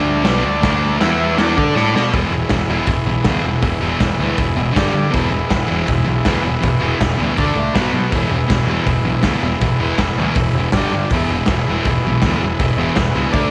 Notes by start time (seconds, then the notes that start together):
Already playing: D2 D3 A3 D4 A4 D5
0.23 B1 B2 F#3 B3, snare, crash
0.43 D2 D3 A3
0.61 D2 D3 A3 D4, kick, snare, crash
0.99 E2 E3 B3 E4 B4 E5, snare, crash
1.34 E3 D4 A4 D5
1.38 E2 B3 E4, snare, crash
1.57 D3 D4 A4 D5, kick
1.76 A2 A3 E4 A4, snare
1.95 B2 B3 F#4 B4, snare
2.12 E1 E2 E4 G#4 B4, kick, open hi-hat
2.16 B2 E3
2.31 E1 E2 B2
2.49 E1 E2 B2, kick, snare, open hi-hat
2.69 E1 E2 B2 E3
2.86 E1 E2 B2, kick, open hi-hat
3.05 B1 E2 B2
3.24 D2 E2 B2 E3, kick, snare, open hi-hat
3.44 E1 E2 B2
3.62 E1 E2 B2, kick, open hi-hat
3.81 E1 E2 B2 E3
4.00 E1 E2 B2, kick, snare, open hi-hat
4.19 D2 E2 B2 E3
4.37 E1 E2 B2, kick, open hi-hat
4.56 E1 E2 B2
4.73 G1 G2 D3 G3 G4, kick
4.77 D4 D5, snare, open hi-hat
4.93 G2 D3
5.11 E1 E2 B2 E3 E4 G#4 B4, kick, open hi-hat
5.29 E1 E2 B2
5.50 E1 E2 B2, kick, snare, open hi-hat
5.67 E1 E2 B2 E3
5.86 E1 E2 B2, kick, open hi-hat
6.05 B1 E2 B2
6.25 D2 E2 B2 E3, kick, snare, open hi-hat
6.43 E1 E2 B2
6.61 E1 E2 B2, kick, open hi-hat
6.80 E1 E2 B2 E3
6.99 E1 E2 B2, kick, snare, open hi-hat
7.18 D2 E2 B2 E3
7.37 D2 D3 A3 D4 A4 D5, kick, open hi-hat
7.55 C#2 D3 A3
7.73 B1 B2 F#3 B3 F#4 B4, kick, snare, open hi-hat
7.93 B2 F#3
8.12 E1 E2 B2 E3 E4 G#4 B4, kick, open hi-hat
8.30 E1 E2 B2
8.48 E1 E2 B2, kick, snare, open hi-hat
8.65 E1 E2 B2 E3
8.86 E1 E2 B2, kick, open hi-hat
9.04 B1 E2 B2
9.23 D2 E2 B2 E3, kick, snare, open hi-hat
9.41 E1 E2 B2
9.61 E1 E2 B2, kick, open hi-hat
9.79 E1 E2 B2 E3
9.98 E1 E2 B2, kick, snare, open hi-hat
10.18 D2 E2 B2 E3
10.35 E1 E2 B2, kick, open hi-hat
10.53 E1
10.58 E2 B2
10.72 G1 G2 D4 G4 D5, kick, snare, open hi-hat
10.77 D3 G3
10.92 G2 D3
11.10 E1 E2 E3 E4 G#4 B4, kick, open hi-hat
11.14 B2
11.29 E1 E2 B2
11.46 E1, kick, snare, open hi-hat
11.51 E2 B2
11.67 E1 E2 B2 E3
11.85 E1 E2, kick, open hi-hat
11.89 B2
12.04 B1 E2 B2
12.22 D2 E2, kick, snare, open hi-hat
12.26 B2 E3
12.41 E1 E2 B2
12.59 E1 E2 B2, kick, open hi-hat
12.76 E1 E2 B2 E3
12.96 E1 E2 B2, kick, snare, open hi-hat
13.15 C#2 E2 B2 E3
13.31 D2 D3 A3 D4 A4 D5, kick, open hi-hat